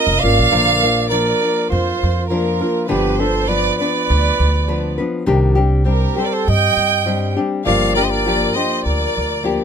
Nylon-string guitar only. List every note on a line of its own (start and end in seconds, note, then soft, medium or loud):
0.00 0.24 A#3 soft
0.00 0.23 C#4 soft
0.00 0.23 F4 soft
0.00 0.23 A#4 soft
0.23 0.51 A#3 medium
0.23 0.51 C#4 medium
0.23 0.52 F4 medium
0.23 0.51 A#4 medium
0.51 0.82 A#2 medium
0.51 0.82 D3 medium
0.51 0.82 F3 medium
0.51 0.82 A#3 medium
0.51 0.82 D4 medium
0.51 0.81 A#4 medium
0.82 1.10 F3 soft
0.82 1.11 A#3 soft
0.82 1.11 D4 soft
0.82 1.12 A#4 soft
1.11 1.42 F3 medium
1.11 1.41 A#3 medium
1.11 1.40 D4 medium
1.11 1.40 A#4 medium
1.41 2.30 F3 soft
1.41 2.30 A#3 soft
1.41 2.31 D4 soft
1.41 2.30 A#4 soft
2.30 2.61 F3 medium
2.30 2.60 A#3 medium
2.30 2.60 D4 medium
2.30 2.60 A#4 medium
2.61 2.87 F3 soft
2.61 2.89 A#3 soft
2.61 2.88 D4 soft
2.61 2.89 A#4 soft
2.88 3.20 G2 medium
2.88 3.20 D3 medium
2.88 3.20 F3 medium
2.88 3.19 B3 medium
2.88 3.19 D4 medium
2.88 3.18 B4 medium
3.19 3.47 F3 soft
3.19 3.47 B3 soft
3.19 3.48 D4 medium
3.19 3.49 B4 medium
3.48 3.80 F3 medium
3.48 3.80 B3 medium
3.48 3.79 D4 medium
3.48 3.79 B4 medium
3.80 4.66 F3 soft
3.80 4.67 B3 soft
3.80 4.68 D4 soft
3.80 4.68 B4 soft
4.68 4.99 F3 medium
4.68 4.98 B3 medium
4.68 4.99 D4 medium
4.68 4.97 B4 medium
4.98 5.26 F3 soft
4.98 5.27 B3 medium
4.98 5.25 D4 soft
4.98 5.27 B4 medium
5.26 5.58 C3 medium
5.26 5.57 D#3 medium
5.26 5.56 G3 medium
5.26 5.55 C4 medium
5.26 5.56 D4 medium
5.26 5.54 G4 medium
5.55 5.83 G3 medium
5.55 5.84 C4 medium
5.55 5.85 D4 medium
5.55 5.85 G4 medium
5.85 6.16 G3 medium
5.85 6.16 C4 medium
5.85 6.17 D4 medium
5.85 6.15 G4 medium
6.16 7.05 G3 soft
6.16 7.05 C4 soft
6.16 7.06 G4 medium
7.06 7.36 G3 medium
7.06 7.36 C4 medium
7.06 7.35 D4 medium
7.06 7.35 G4 medium
7.37 7.65 G3 soft
7.37 7.65 C4 medium
7.37 7.64 D4 medium
7.37 7.65 G4 medium
7.65 7.96 G2 medium
7.65 7.96 D3 medium
7.65 7.96 F3 medium
7.65 7.96 A#3 medium
7.65 7.96 D4 medium
7.65 7.96 G4 medium
7.97 8.24 F3 soft
7.97 8.25 A#3 soft
7.97 8.25 D4 soft
7.97 8.25 G4 soft
8.25 8.55 F3 medium
8.25 8.55 A#3 medium
8.25 8.55 D4 medium
8.25 8.54 G4 medium
8.56 9.42 F3 soft
8.56 9.42 A#3 soft
8.56 9.43 D4 soft
8.56 9.45 G4 soft
9.43 9.64 F3 medium
9.43 9.64 A#3 medium
9.43 9.64 D4 medium
9.43 9.64 G4 medium